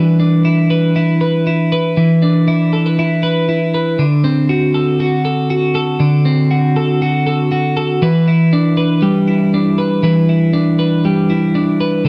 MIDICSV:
0, 0, Header, 1, 2, 480
1, 0, Start_track
1, 0, Tempo, 504626
1, 1867, Time_signature, 4, 2, 24, 8
1, 11496, End_track
2, 0, Start_track
2, 0, Title_t, "Clean electric guitar"
2, 0, Program_c, 0, 27
2, 0, Note_on_c, 0, 52, 77
2, 0, Note_on_c, 0, 55, 84
2, 0, Note_on_c, 0, 62, 62
2, 0, Note_on_c, 0, 71, 66
2, 183, Note_off_c, 0, 62, 0
2, 187, Note_on_c, 0, 62, 58
2, 427, Note_on_c, 0, 64, 67
2, 665, Note_off_c, 0, 71, 0
2, 669, Note_on_c, 0, 71, 63
2, 901, Note_off_c, 0, 64, 0
2, 912, Note_on_c, 0, 64, 63
2, 1140, Note_off_c, 0, 71, 0
2, 1152, Note_on_c, 0, 71, 62
2, 1342, Note_off_c, 0, 55, 0
2, 1385, Note_off_c, 0, 64, 0
2, 1397, Note_on_c, 0, 64, 56
2, 1627, Note_off_c, 0, 71, 0
2, 1638, Note_on_c, 0, 71, 57
2, 1864, Note_off_c, 0, 52, 0
2, 1876, Note_on_c, 0, 52, 72
2, 2112, Note_off_c, 0, 62, 0
2, 2116, Note_on_c, 0, 62, 57
2, 2345, Note_off_c, 0, 64, 0
2, 2357, Note_on_c, 0, 64, 66
2, 2592, Note_off_c, 0, 71, 0
2, 2596, Note_on_c, 0, 69, 58
2, 2720, Note_off_c, 0, 69, 0
2, 2720, Note_on_c, 0, 71, 56
2, 2833, Note_off_c, 0, 64, 0
2, 2843, Note_on_c, 0, 64, 66
2, 3061, Note_off_c, 0, 71, 0
2, 3073, Note_on_c, 0, 71, 61
2, 3304, Note_off_c, 0, 64, 0
2, 3316, Note_on_c, 0, 64, 54
2, 3551, Note_off_c, 0, 71, 0
2, 3561, Note_on_c, 0, 71, 62
2, 3791, Note_off_c, 0, 52, 0
2, 3795, Note_on_c, 0, 50, 72
2, 3841, Note_off_c, 0, 64, 0
2, 3843, Note_off_c, 0, 71, 0
2, 4030, Note_off_c, 0, 62, 0
2, 4034, Note_on_c, 0, 60, 64
2, 4274, Note_on_c, 0, 66, 65
2, 4512, Note_on_c, 0, 69, 63
2, 4746, Note_off_c, 0, 66, 0
2, 4758, Note_on_c, 0, 66, 66
2, 4982, Note_off_c, 0, 69, 0
2, 4994, Note_on_c, 0, 69, 65
2, 5223, Note_off_c, 0, 66, 0
2, 5235, Note_on_c, 0, 66, 54
2, 5458, Note_off_c, 0, 69, 0
2, 5469, Note_on_c, 0, 69, 68
2, 5703, Note_off_c, 0, 50, 0
2, 5706, Note_on_c, 0, 50, 79
2, 5937, Note_off_c, 0, 60, 0
2, 5949, Note_on_c, 0, 60, 57
2, 6180, Note_off_c, 0, 66, 0
2, 6191, Note_on_c, 0, 66, 62
2, 6423, Note_off_c, 0, 69, 0
2, 6435, Note_on_c, 0, 69, 65
2, 6666, Note_off_c, 0, 66, 0
2, 6677, Note_on_c, 0, 66, 65
2, 6900, Note_off_c, 0, 69, 0
2, 6911, Note_on_c, 0, 69, 61
2, 7138, Note_off_c, 0, 66, 0
2, 7149, Note_on_c, 0, 66, 59
2, 7377, Note_off_c, 0, 69, 0
2, 7389, Note_on_c, 0, 69, 58
2, 7626, Note_off_c, 0, 50, 0
2, 7630, Note_on_c, 0, 52, 82
2, 7633, Note_off_c, 0, 69, 0
2, 7637, Note_on_c, 0, 71, 67
2, 7678, Note_off_c, 0, 60, 0
2, 7678, Note_off_c, 0, 66, 0
2, 7872, Note_on_c, 0, 64, 57
2, 8112, Note_on_c, 0, 62, 69
2, 8333, Note_off_c, 0, 71, 0
2, 8344, Note_on_c, 0, 71, 68
2, 8582, Note_on_c, 0, 55, 77
2, 8812, Note_off_c, 0, 64, 0
2, 8824, Note_on_c, 0, 64, 58
2, 9069, Note_off_c, 0, 62, 0
2, 9073, Note_on_c, 0, 62, 62
2, 9294, Note_off_c, 0, 71, 0
2, 9305, Note_on_c, 0, 71, 70
2, 9531, Note_off_c, 0, 52, 0
2, 9533, Note_off_c, 0, 71, 0
2, 9541, Note_on_c, 0, 52, 85
2, 9548, Note_on_c, 0, 71, 63
2, 9777, Note_off_c, 0, 64, 0
2, 9788, Note_on_c, 0, 64, 60
2, 10015, Note_off_c, 0, 62, 0
2, 10019, Note_on_c, 0, 62, 68
2, 10251, Note_off_c, 0, 71, 0
2, 10262, Note_on_c, 0, 71, 69
2, 10498, Note_off_c, 0, 55, 0
2, 10510, Note_on_c, 0, 55, 71
2, 10735, Note_off_c, 0, 64, 0
2, 10747, Note_on_c, 0, 64, 64
2, 10983, Note_off_c, 0, 62, 0
2, 10987, Note_on_c, 0, 62, 65
2, 11217, Note_off_c, 0, 71, 0
2, 11229, Note_on_c, 0, 71, 70
2, 11458, Note_off_c, 0, 52, 0
2, 11462, Note_on_c, 0, 50, 82
2, 11467, Note_off_c, 0, 71, 0
2, 11496, Note_off_c, 0, 50, 0
2, 11496, Note_off_c, 0, 55, 0
2, 11496, Note_off_c, 0, 62, 0
2, 11496, Note_off_c, 0, 64, 0
2, 11496, End_track
0, 0, End_of_file